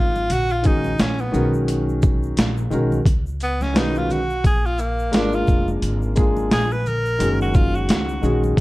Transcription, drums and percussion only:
0.16 high conga, shaker
0.30 closed hi-hat, low conga, shaker
0.50 shaker
0.64 kick, closed hi-hat, shaker
0.84 high conga, shaker
0.98 snare, closed hi-hat, shaker
1.18 shaker
1.34 high conga, low conga, shaker
1.54 shaker
1.68 closed hi-hat, shaker
1.89 shaker
2.02 kick, shaker
2.23 shaker
2.37 snare, closed hi-hat, shaker
2.58 shaker
2.71 high conga, low conga, shaker
2.92 high conga, shaker
3.06 kick, closed hi-hat, low conga, shaker
3.26 shaker
3.40 closed hi-hat, shaker
3.61 snare, high conga, shaker
3.75 snare, closed hi-hat, shaker
3.95 shaker
4.10 high conga, low conga, shaker
4.30 shaker
4.44 kick, closed hi-hat, shaker
4.65 shaker
4.78 shaker
4.99 shaker
5.13 snare, closed hi-hat, shaker
5.33 shaker
5.47 kick, high conga, low conga, shaker
5.68 high conga, shaker
5.82 closed hi-hat, low conga, shaker
6.02 shaker
6.16 kick, closed hi-hat, shaker
6.37 high conga, shaker
6.51 snare, closed hi-hat, shaker
6.71 shaker
6.86 high conga, low conga, shaker
7.06 shaker
7.20 closed hi-hat, shaker
7.41 shaker
7.54 kick, shaker
7.75 shaker
7.89 snare, closed hi-hat, shaker
8.09 shaker
8.23 high conga, low conga, shaker
8.44 high conga, shaker
8.57 kick

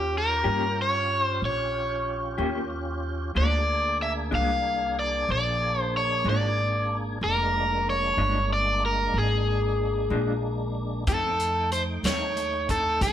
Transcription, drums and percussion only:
11.07 kick, closed hi-hat
11.40 closed hi-hat
11.72 closed hi-hat
12.04 snare, closed hi-hat
12.37 closed hi-hat
12.69 kick, closed hi-hat
13.01 kick, closed hi-hat

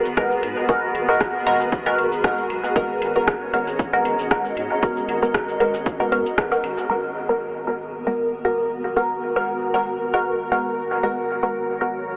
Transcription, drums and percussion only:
0.05 cabasa
0.17 kick, cross-stick, cabasa
0.31 cabasa
0.43 closed hi-hat
0.69 kick, cabasa
0.95 closed hi-hat
1.21 kick, cross-stick, cabasa
1.47 closed hi-hat
1.60 cabasa
1.72 kick, cabasa
1.86 cabasa
1.98 closed hi-hat
2.12 cabasa
2.24 kick, cross-stick, cabasa
2.38 cabasa
2.50 closed hi-hat
2.64 cabasa
2.76 kick, cabasa
3.02 closed hi-hat
3.28 kick, cross-stick, cabasa
3.54 closed hi-hat
3.67 cabasa
3.79 kick, cabasa
3.93 cabasa
4.05 closed hi-hat
4.19 cabasa
4.31 kick, cross-stick, cabasa
4.45 cabasa
4.57 closed hi-hat
4.83 kick, cabasa
4.97 cabasa
5.09 closed hi-hat
5.22 cabasa
5.34 kick, cross-stick, cabasa
5.48 cabasa
5.60 closed hi-hat
5.74 cabasa
5.86 kick, cabasa
6.00 cabasa
6.12 closed hi-hat
6.26 cabasa
6.38 kick, cross-stick, cabasa
6.52 cabasa
6.64 closed hi-hat
6.78 cabasa

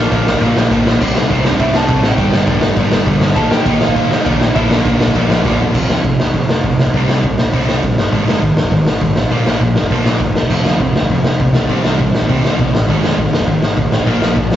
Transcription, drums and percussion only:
0.12 kick, ride
0.27 snare
0.34 kick
0.42 kick, ride
0.56 snare
0.71 kick, ride
0.87 snare
1.01 kick, crash
1.16 snare
1.30 kick, ride
1.45 snare
1.52 kick
1.59 kick, ride
1.74 snare
1.88 kick, ride
2.03 snare
2.18 kick, ride
2.33 snare
2.47 kick, ride
2.61 snare
2.70 kick
2.76 kick, ride
2.91 snare
3.06 kick, ride
3.21 snare
3.36 kick, ride
3.51 snare
3.66 kick, ride
3.81 snare
3.89 kick
3.96 kick, ride
4.11 snare
4.26 kick, ride
4.41 snare
4.56 kick, ride
4.71 snare
4.85 kick, ride
5.00 snare
5.08 kick
5.15 kick, ride
5.30 snare
5.45 kick, snare
5.60 floor tom
5.75 kick, crash
5.90 snare
6.04 kick, open hi-hat
6.20 snare
6.27 kick
6.34 kick, open hi-hat
6.49 snare
6.64 kick, open hi-hat
6.79 snare
6.87 kick
6.94 kick, open hi-hat
7.09 snare
7.24 kick, open hi-hat
7.38 snare
7.46 kick
7.54 kick, open hi-hat
7.69 snare
7.83 kick, open hi-hat
7.98 snare
8.05 kick
8.13 kick, open hi-hat
8.28 snare
8.42 kick, open hi-hat
8.57 snare
8.65 kick
8.72 kick, open hi-hat
8.87 snare
9.01 kick, open hi-hat
9.16 snare
9.24 kick
9.31 kick, open hi-hat
9.46 snare
9.61 kick, open hi-hat
9.76 snare
9.83 kick
9.91 kick, open hi-hat
10.06 snare
10.20 kick, open hi-hat
10.35 snare
10.43 kick
10.50 kick, crash
10.65 snare
10.80 kick, open hi-hat
10.96 snare
11.02 kick
11.10 kick, open hi-hat
11.24 snare
11.40 kick, open hi-hat
11.54 snare
11.62 kick
11.69 kick, open hi-hat
11.84 snare
11.99 kick, open hi-hat
12.15 snare
12.22 kick
12.29 kick, open hi-hat
12.45 snare
12.59 kick, open hi-hat
12.75 snare
12.81 kick
12.89 kick, open hi-hat
13.04 snare
13.18 kick, open hi-hat
13.33 snare
13.40 kick
13.48 kick, open hi-hat
13.62 snare
13.77 kick, open hi-hat
13.92 snare
14.00 kick
14.07 kick, open hi-hat
14.22 snare
14.37 kick, open hi-hat
14.52 snare

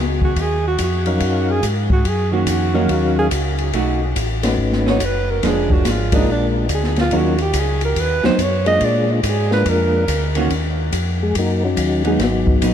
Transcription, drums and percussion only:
0.22 kick
0.36 kick, ride
0.78 kick, hi-hat pedal, ride
1.06 ride
1.20 kick, ride
1.63 kick, hi-hat pedal, ride
1.90 kick
2.05 kick, ride
2.47 kick, hi-hat pedal, ride
2.89 kick, ride
3.31 kick, hi-hat pedal, ride
3.58 ride
3.73 kick, ride
4.16 kick, hi-hat pedal, ride
4.43 snare, ride
4.58 kick
4.72 snare
4.87 snare
5.00 kick, hi-hat pedal, ride
5.43 kick, snare, ride
5.70 kick
5.85 kick, snare, hi-hat pedal, ride
6.12 kick, ride
6.27 kick
6.69 kick, hi-hat pedal, ride
6.83 snare
6.96 snare, ride
7.11 kick, ride
7.38 ride
7.53 kick, hi-hat pedal, ride
7.81 ride
7.96 kick, ride
8.24 snare
8.39 kick, hi-hat pedal, ride
8.66 ride
8.81 kick, ride
9.23 kick, hi-hat pedal, ride
9.51 snare
9.66 kick, ride
10.08 kick, hi-hat pedal, ride
10.35 ride
10.50 kick, ride
10.92 kick, hi-hat pedal, ride
11.35 kick, ride
11.77 kick, hi-hat pedal, ride
12.05 ride
12.20 kick, snare, ride
12.47 kick
12.62 kick, hi-hat pedal, ride

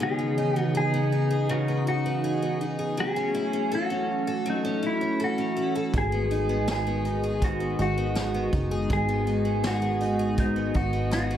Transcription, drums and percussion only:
5.94 kick, closed hi-hat
6.31 closed hi-hat
6.67 snare, closed hi-hat
7.05 closed hi-hat
7.42 kick, closed hi-hat
7.79 closed hi-hat
8.16 snare, closed hi-hat
8.53 kick, closed hi-hat
8.90 kick, closed hi-hat
9.27 closed hi-hat
9.63 snare, closed hi-hat
10.01 closed hi-hat
10.38 kick, closed hi-hat
10.75 kick, closed hi-hat
11.12 snare, closed hi-hat

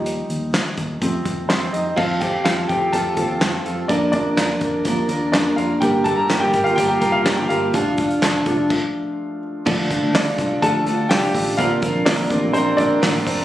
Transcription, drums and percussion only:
0.06 closed hi-hat
0.30 closed hi-hat
0.54 snare, clap, closed hi-hat
0.77 kick, closed hi-hat
1.02 kick, closed hi-hat
1.25 kick, closed hi-hat
1.50 snare, clap, closed hi-hat
1.74 closed hi-hat
1.97 kick, crash
2.21 kick, closed hi-hat
2.46 snare, clap, closed hi-hat
2.69 kick, closed hi-hat
2.93 kick, closed hi-hat
3.17 kick, closed hi-hat
3.41 snare, clap, closed hi-hat
3.66 closed hi-hat
3.89 kick, closed hi-hat
4.13 kick, closed hi-hat
4.37 snare, clap, closed hi-hat
4.61 kick, closed hi-hat
4.85 kick, closed hi-hat
5.09 closed hi-hat
5.34 snare, clap, closed hi-hat
5.58 closed hi-hat
5.82 kick, closed hi-hat
6.05 kick, closed hi-hat
6.30 snare, clap, closed hi-hat
6.53 kick, closed hi-hat
6.66 closed hi-hat
6.78 kick, closed hi-hat
7.01 kick, closed hi-hat
7.26 snare, clap, closed hi-hat
7.50 closed hi-hat
7.74 kick, closed hi-hat
7.98 kick, closed hi-hat
8.11 closed hi-hat
8.22 snare, clap, closed hi-hat
8.46 kick, closed hi-hat
8.70 kick, crash
9.67 kick, crash
9.90 kick, hi-hat pedal, open hi-hat
10.15 snare, clap, hi-hat pedal, open hi-hat
10.38 kick, hi-hat pedal, open hi-hat
10.63 kick, hi-hat pedal, open hi-hat
10.86 hi-hat pedal, open hi-hat
11.11 snare, clap, hi-hat pedal, open hi-hat
11.35 kick, hi-hat pedal, open hi-hat
11.58 kick, hi-hat pedal, open hi-hat
11.82 kick, hi-hat pedal, open hi-hat
12.06 snare, clap, hi-hat pedal, open hi-hat
12.30 kick, hi-hat pedal, open hi-hat
12.54 hi-hat pedal, open hi-hat
12.78 kick, hi-hat pedal, open hi-hat
13.03 snare, clap, hi-hat pedal, open hi-hat
13.27 kick, hi-hat pedal, open hi-hat

